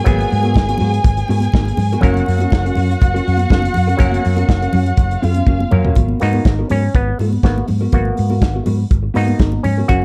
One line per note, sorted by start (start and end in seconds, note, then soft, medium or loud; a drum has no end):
0.00 1.99 G#4 medium
0.00 2.00 G#5 loud
0.04 0.24 G#1 loud
0.04 1.98 F#3 medium
0.04 1.99 A#3 medium
0.04 0.29 B3 medium
0.04 1.99 B3 medium
0.04 0.30 F#4 medium
0.04 2.00 G#4 medium
0.04 0.30 A#4 medium
0.04 kick loud
0.04 closed hi-hat medium
0.04 low conga medium
0.18 closed hi-hat soft
0.18 high conga medium
0.31 0.57 G#2 loud
0.31 muted clean electric guitar stroke soft
0.31 open hi-hat medium
0.31 muted conga soft
0.43 0.55 B3 medium
0.43 0.55 F#4 medium
0.43 0.55 A#4 medium
0.43 closed hi-hat soft
0.43 high conga medium
0.54 0.73 G#1 loud
0.54 kick loud
0.54 snare loud
0.54 muted conga soft
0.68 0.78 B3 medium
0.68 0.80 F#4 medium
0.68 0.80 A#4 medium
0.68 closed hi-hat medium
0.78 0.98 G#2 loud
0.78 0.95 B3 medium
0.78 0.92 F#4 medium
0.78 0.91 A#4 medium
0.78 open hi-hat medium
0.78 muted conga soft
0.78 low conga medium
0.92 muted clean electric guitar stroke medium
0.92 closed hi-hat medium
1.04 1.22 G#1 loud
1.04 muted clean electric guitar stroke soft
1.04 kick loud
1.04 closed hi-hat medium
1.04 muted conga soft
1.17 muted clean electric guitar stroke soft
1.17 closed hi-hat soft
1.28 1.47 G#2 medium
1.28 1.45 B3 medium
1.28 1.43 F#4 medium
1.28 1.42 A#4 loud
1.28 open hi-hat medium
1.28 muted conga soft
1.40 muted clean electric guitar stroke soft
1.40 closed hi-hat medium
1.40 high conga medium
1.52 1.71 G#1 loud
1.52 1.69 B3 medium
1.52 1.67 F#4 medium
1.52 1.66 A#4 medium
1.52 kick loud
1.52 snare loud
1.52 muted conga soft
1.65 muted clean electric guitar stroke soft
1.65 closed hi-hat medium
1.65 high conga medium
1.77 1.95 G#2 medium
1.77 muted clean electric guitar stroke soft
1.77 open hi-hat medium
1.77 muted conga soft
1.77 low conga medium
1.92 2.04 B3 medium
1.92 2.03 F#4 medium
1.92 2.03 A#4 medium
1.92 closed hi-hat soft
2.01 2.21 F#1 loud
2.01 3.95 F#3 medium
2.01 3.95 A#3 medium
2.01 3.96 C#4 medium
2.01 2.27 C#4 medium
2.01 5.19 F#4 medium
2.01 2.27 F#4 medium
2.01 3.96 A#4 medium
2.01 5.19 F#5 loud
2.01 kick loud
2.01 closed hi-hat medium
2.01 muted conga soft
2.01 low conga medium
2.05 2.27 A#4 loud
2.14 closed hi-hat soft
2.14 high conga medium
2.26 2.45 F#2 medium
2.26 open hi-hat medium
2.26 muted conga soft
2.38 2.51 C#4 medium
2.38 2.52 F#4 medium
2.38 2.52 A#4 medium
2.38 closed hi-hat soft
2.38 high conga medium
2.50 2.70 F#1 loud
2.50 muted clean electric guitar stroke soft
2.50 kick loud
2.50 snare loud
2.50 muted conga soft
2.65 2.76 C#4 medium
2.65 2.77 F#4 medium
2.65 2.76 A#4 medium
2.65 closed hi-hat soft
2.75 2.94 F#2 loud
2.75 2.93 C#4 medium
2.75 2.90 F#4 medium
2.75 2.89 A#4 medium
2.75 open hi-hat medium
2.75 low conga medium
2.91 muted clean electric guitar stroke soft
2.91 closed hi-hat soft
3.01 3.19 F#1 loud
3.01 muted clean electric guitar stroke soft
3.01 kick loud
3.01 closed hi-hat medium
3.01 muted conga soft
3.14 3.24 C#4 medium
3.14 3.25 F#4 medium
3.14 3.26 A#4 medium
3.14 closed hi-hat soft
3.26 3.44 F#2 medium
3.26 3.38 C#4 medium
3.26 3.38 F#4 medium
3.26 3.37 A#4 medium
3.26 open hi-hat medium
3.38 muted clean electric guitar stroke medium
3.38 closed hi-hat medium
3.38 high conga medium
3.50 3.68 F#1 loud
3.50 3.65 C#4 medium
3.50 3.63 F#4 medium
3.50 3.62 A#4 medium
3.50 kick loud
3.50 snare loud
3.50 muted conga soft
3.62 muted clean electric guitar stroke soft
3.62 closed hi-hat soft
3.62 high conga medium
3.74 3.93 F#2 medium
3.74 muted clean electric guitar stroke soft
3.74 open hi-hat medium
3.74 muted conga soft
3.74 low conga medium
3.87 3.98 C#4 medium
3.87 3.98 F#4 medium
3.87 3.99 A#4 medium
3.87 closed hi-hat soft
3.97 4.17 F#1 loud
3.97 5.67 F#3 medium
3.97 5.67 A#3 medium
3.97 5.68 C#4 medium
3.97 4.22 C#4 medium
3.97 4.23 F#4 medium
3.97 5.68 A#4 medium
3.97 4.23 A#4 medium
3.97 kick loud
3.97 closed hi-hat medium
3.97 muted conga soft
3.97 low conga medium
4.12 closed hi-hat soft
4.12 high conga medium
4.25 4.42 F#2 medium
4.25 open hi-hat medium
4.37 4.48 C#4 medium
4.37 4.48 F#4 medium
4.37 4.48 A#4 medium
4.37 closed hi-hat medium
4.37 high conga medium
4.49 4.66 F#1 loud
4.49 kick loud
4.49 snare loud
4.49 muted conga soft
4.62 4.72 C#4 soft
4.62 4.73 F#4 medium
4.62 4.73 A#4 medium
4.62 closed hi-hat medium
4.73 4.91 F#2 loud
4.73 4.89 C#4 medium
4.73 4.87 F#4 medium
4.73 4.86 A#4 medium
4.73 open hi-hat medium
4.73 low conga medium
4.86 muted clean electric guitar stroke medium
4.86 closed hi-hat medium
4.97 5.15 F#1 loud
4.97 muted clean electric guitar stroke soft
4.97 kick loud
4.97 closed hi-hat medium
4.97 muted conga soft
5.11 muted clean electric guitar stroke soft
5.11 closed hi-hat medium
5.22 5.40 F#2 medium
5.22 5.43 C#4 medium
5.22 5.95 F4 medium
5.22 5.35 F#4 medium
5.22 5.34 A#4 medium
5.22 5.95 F5 medium
5.22 open hi-hat medium
5.22 muted conga soft
5.34 muted clean electric guitar stroke soft
5.34 closed hi-hat medium
5.34 high conga medium
5.47 5.64 F#1 loud
5.47 5.62 C#4 medium
5.47 5.61 F#4 medium
5.47 5.60 A#4 medium
5.47 kick loud
5.47 high tom medium
5.47 muted conga soft
5.60 muted clean electric guitar stroke soft
5.60 high conga medium
5.71 5.89 F#2 medium
5.71 5.96 F#3 soft
5.71 5.96 A#3 soft
5.71 5.96 C#4 soft
5.71 5.97 A#4 medium
5.71 muted clean electric guitar stroke soft
5.71 mid tom medium
5.71 muted conga soft
5.71 low conga loud
5.85 5.96 C#4 soft
5.85 5.96 F#4 medium
5.85 5.96 A#4 medium
5.85 floor tom loud
5.96 6.13 G#1 loud
5.96 6.19 B3 medium
5.96 6.20 F#4 medium
5.96 6.20 A#4 medium
5.96 kick loud
5.96 closed hi-hat medium
5.96 low conga medium
6.08 high conga medium
6.20 6.39 G#2 loud
6.20 6.54 A#3 medium
6.20 6.54 B3 soft
6.20 6.68 D#4 medium
6.20 6.54 F#4 medium
6.20 muted clean electric guitar stroke soft
6.20 open hi-hat medium
6.20 muted conga soft
6.33 6.45 B3 medium
6.33 6.45 F#4 medium
6.33 6.45 A#4 medium
6.33 high conga medium
6.45 6.62 G#1 loud
6.45 muted clean electric guitar stroke soft
6.45 kick loud
6.45 snare loud
6.45 closed hi-hat medium
6.45 muted conga soft
6.59 6.68 B3 medium
6.59 6.70 F#4 medium
6.59 6.69 A#4 medium
6.70 6.88 G#2 medium
6.70 6.85 B3 medium
6.70 6.96 C#4 medium
6.70 6.83 F#4 medium
6.70 6.82 A#4 loud
6.70 open hi-hat medium
6.70 muted conga soft
6.70 low conga medium
6.83 muted clean electric guitar stroke soft
6.95 7.12 G#1 loud
6.95 7.18 B3 medium
6.95 muted clean electric guitar stroke soft
6.95 kick loud
6.95 closed hi-hat medium
7.08 muted clean electric guitar stroke soft
7.19 7.36 G#2 medium
7.19 7.40 B3 medium
7.19 7.33 F#4 medium
7.19 7.31 A#4 medium
7.19 open hi-hat medium
7.19 muted conga soft
7.33 muted clean electric guitar stroke soft
7.33 high conga medium
7.43 7.61 G#1 loud
7.43 7.66 A#3 soft
7.43 7.59 B3 medium
7.43 7.66 B3 soft
7.43 7.66 F#4 medium
7.43 7.57 F#4 medium
7.43 7.56 A#4 medium
7.43 kick loud
7.43 snare medium
7.43 closed hi-hat medium
7.57 muted clean electric guitar stroke soft
7.57 high conga medium
7.68 7.86 G#2 medium
7.68 muted clean electric guitar stroke soft
7.68 open hi-hat medium
7.68 low conga medium
7.81 7.92 B3 medium
7.81 7.92 F#4 medium
7.81 7.92 A#4 medium
7.92 8.10 G#1 loud
7.92 8.63 A#3 medium
7.92 8.63 B3 soft
7.92 8.16 B3 medium
7.92 8.16 F#4 medium
7.92 8.64 F#4 medium
7.92 8.16 A#4 loud
7.92 kick loud
7.92 closed hi-hat medium
7.92 low conga medium
8.05 high conga medium
8.17 8.43 G#2 medium
8.17 muted clean electric guitar stroke soft
8.17 open hi-hat medium
8.17 muted conga soft
8.30 8.40 B3 soft
8.30 8.40 F#4 medium
8.30 8.41 A#4 medium
8.30 high conga medium
8.41 8.59 G#1 medium
8.41 muted clean electric guitar stroke soft
8.41 kick loud
8.41 snare loud
8.41 closed hi-hat medium
8.41 muted conga soft
8.55 8.65 B3 soft
8.55 8.65 F#4 medium
8.55 8.66 A#4 medium
8.66 8.84 G#2 medium
8.66 8.82 B3 medium
8.66 8.78 F#4 loud
8.66 8.77 A#4 loud
8.66 open hi-hat medium
8.66 muted conga soft
8.66 low conga medium
8.78 muted clean electric guitar stroke soft
8.90 9.08 G#1 medium
8.90 muted clean electric guitar stroke soft
8.90 kick loud
8.90 closed hi-hat medium
9.03 muted clean electric guitar stroke soft
9.14 9.33 G#2 medium
9.14 9.38 A#3 soft
9.14 9.30 B3 medium
9.14 9.38 B3 soft
9.14 9.66 D#4 medium
9.14 9.27 F#4 medium
9.14 9.38 F#4 soft
9.14 9.26 A#4 medium
9.14 open hi-hat medium
9.14 muted conga soft
9.28 muted clean electric guitar stroke soft
9.28 high conga medium
9.39 9.57 G#1 loud
9.39 9.55 B3 medium
9.39 9.53 F#4 medium
9.39 9.52 A#4 medium
9.39 kick loud
9.39 snare medium
9.39 closed hi-hat medium
9.39 muted conga soft
9.52 muted clean electric guitar stroke soft
9.52 high conga medium
9.63 9.82 G#2 medium
9.63 9.87 C#4 medium
9.63 muted clean electric guitar stroke soft
9.63 open hi-hat medium
9.63 low conga medium
9.78 9.89 B3 medium
9.78 9.89 F#4 soft
9.78 9.88 A#4 medium
9.88 10.05 F#1 loud
9.88 10.05 A#3 soft
9.88 10.05 C#4 soft
9.88 10.05 C#4 medium
9.88 10.05 F#4 loud
9.88 10.05 F#4 medium
9.88 10.05 A#4 medium
9.88 kick loud
9.88 closed hi-hat medium
9.88 muted conga soft
9.88 low conga medium